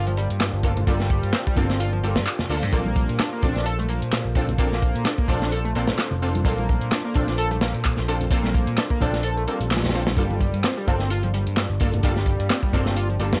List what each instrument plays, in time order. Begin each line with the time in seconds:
Already playing: picked electric bass G1, ambient pad A#3 D4 F4 G4 C5
0.06 analog synth lead F3, closed hi-hat, high conga
0.17 analog synth lead G3, closed hi-hat
0.30 picked electric bass G2, closed hi-hat
0.40 snare, clap, closed hi-hat
0.53 picked electric bass G1, closed hi-hat
0.63 synth stab A#3 D4 F4 A4, kick, closed hi-hat
0.77 closed hi-hat, low conga
0.87 analog synth lead G3, synth stab A#3 D4 F4 A4, kick, closed hi-hat
1.00 snare, closed hi-hat
1.10 kick, closed hi-hat
1.23 picked electric bass G2, closed hi-hat
1.33 analog synth lead C4, snare, clap, closed hi-hat
1.47 analog synth lead G3, kick, closed hi-hat
1.56 picked electric bass G1, synth stab A#3 D4 F4 A4, analog synth lead C4, kick, closed hi-hat, low conga
1.70 snare, closed hi-hat
1.80 analog synth lead F4, closed hi-hat
1.93 analog synth lead F3, closed hi-hat
2.03 picked electric bass G1, analog synth lead G3, synth stab A#3 D4 F4 A4, closed hi-hat
2.16 picked electric bass G2, snare, closed hi-hat
2.26 clap, closed hi-hat
2.39 snare, closed hi-hat, low conga
2.49 picked electric bass D2, synth stab A#3 D4 F4 A4, open hi-hat
2.63 picked electric bass G2, closed hi-hat, high conga
2.73 picked electric bass A#1, analog synth lead A#3, synth stab C4 D4 F4 A4, ambient pad A4, kick, closed hi-hat
2.86 closed hi-hat, high conga
2.96 kick, closed hi-hat
3.09 picked electric bass A#2, closed hi-hat
3.19 analog synth lead D4, snare, clap, closed hi-hat
3.33 analog synth lead A#3, closed hi-hat
3.42 picked electric bass A#1, synth stab C4 D4 F4 A4, analog synth lead D4, kick, closed hi-hat, low conga
3.56 snare, closed hi-hat
3.66 analog synth lead A4, closed hi-hat
3.79 analog synth lead A3, closed hi-hat, high conga
3.89 analog synth lead A#3, closed hi-hat
4.02 picked electric bass A#2, closed hi-hat
4.12 snare, clap, closed hi-hat
4.25 picked electric bass A#1, closed hi-hat
4.35 synth stab C4 D4 F4 A4, kick, closed hi-hat
4.48 closed hi-hat, low conga
4.58 analog synth lead A#3, synth stab C4 D4 F4 A4, kick, closed hi-hat
4.72 snare, closed hi-hat
4.82 kick, closed hi-hat
4.95 picked electric bass A#2, closed hi-hat
5.05 analog synth lead D4, snare, clap, closed hi-hat
5.18 analog synth lead A#3, kick, closed hi-hat
5.28 picked electric bass A#1, synth stab C4 D4 F4 A4, analog synth lead D4, kick, closed hi-hat, low conga
5.42 snare, closed hi-hat
5.52 analog synth lead A4, closed hi-hat
5.65 analog synth lead A3, closed hi-hat
5.75 picked electric bass A#1, analog synth lead A#3, synth stab C4 D4 F4 A4, closed hi-hat
5.88 picked electric bass A#2, snare, closed hi-hat
5.99 snare, clap, closed hi-hat
6.11 picked electric bass F1, closed hi-hat, low conga
6.22 synth stab C4 D4 F4 A4
6.35 closed hi-hat, high conga
6.45 picked electric bass A#1, analog synth lead A#3, synth stab C4 D4 F4 A4, kick, closed hi-hat
6.58 closed hi-hat, high conga
6.69 kick, closed hi-hat
6.81 picked electric bass A#2, closed hi-hat
6.91 analog synth lead D4, snare, clap, closed hi-hat
7.04 analog synth lead A#3, closed hi-hat
7.14 picked electric bass A#1, synth stab C4 D4 F4 A4, analog synth lead D4, kick, closed hi-hat, low conga
7.27 snare, closed hi-hat
7.38 analog synth lead A4, closed hi-hat
7.51 analog synth lead A3, closed hi-hat, high conga
7.61 analog synth lead A#3, snare, closed hi-hat
7.74 picked electric bass A#2, closed hi-hat
7.84 kick, clap, closed hi-hat
7.97 picked electric bass A#1, snare, closed hi-hat
8.08 synth stab C4 D4 F4 A4, closed hi-hat
8.21 closed hi-hat, low conga
8.31 analog synth lead A#3, synth stab C4 D4 F4 A4, kick, closed hi-hat
8.44 snare, closed hi-hat, high conga
8.54 kick, closed hi-hat
8.67 picked electric bass A#2, closed hi-hat
8.78 analog synth lead D4, snare, clap, closed hi-hat
8.90 analog synth lead A#3, kick, closed hi-hat
9.01 picked electric bass A#1, synth stab C4 D4 F4 A4, analog synth lead D4, kick, closed hi-hat, low conga
9.13 snare, closed hi-hat
9.23 analog synth lead A4, closed hi-hat, swell
9.37 analog synth lead A3, closed hi-hat
9.47 analog synth lead A#3, synth stab C4 D4 F4 A4, closed hi-hat
9.61 picked electric bass A#1, closed hi-hat
9.71 snare, clap, closed hi-hat
9.77 snare, closed hi-hat
9.84 snare, closed hi-hat, low conga
9.89 snare, closed hi-hat
9.94 synth stab C4 D4 F4 A4, snare
10.07 snare, closed hi-hat, high conga
10.17 picked electric bass G1, analog synth lead G3, ambient pad A#3 D4 F4 G4 D5, synth stab A#3 D4 F4 A4, kick, closed hi-hat
10.30 closed hi-hat, high conga
10.41 kick, closed hi-hat
10.54 picked electric bass G2, closed hi-hat
10.64 analog synth lead C4, snare, clap, closed hi-hat
10.77 analog synth lead G3, closed hi-hat
10.87 picked electric bass G1, synth stab A#3 D4 F4 A4, analog synth lead C4, kick, closed hi-hat, low conga
10.99 snare, closed hi-hat
11.10 analog synth lead F4, closed hi-hat
11.23 analog synth lead F3, closed hi-hat, high conga
11.34 analog synth lead G3, closed hi-hat
11.47 picked electric bass G2, closed hi-hat
11.57 snare, clap, closed hi-hat
11.70 picked electric bass G1, closed hi-hat
11.80 synth stab A#3 D4 F4 A4, kick, closed hi-hat
11.94 closed hi-hat, low conga
12.03 analog synth lead G3, synth stab A#3 D4 F4 A4, kick, closed hi-hat
12.16 snare, closed hi-hat
12.26 kick, closed hi-hat
12.40 picked electric bass G2, closed hi-hat
12.50 analog synth lead C4, snare, clap, closed hi-hat
12.63 analog synth lead G3, kick, closed hi-hat
12.73 picked electric bass G1, synth stab A#3 D4 F4 A4, analog synth lead C4, kick, closed hi-hat, low conga
12.86 snare, closed hi-hat
12.96 analog synth lead F4, closed hi-hat
13.09 analog synth lead F3, closed hi-hat
13.19 picked electric bass G1, analog synth lead G3, synth stab A#3 D4 F4 A4, closed hi-hat
13.33 picked electric bass G2, snare, closed hi-hat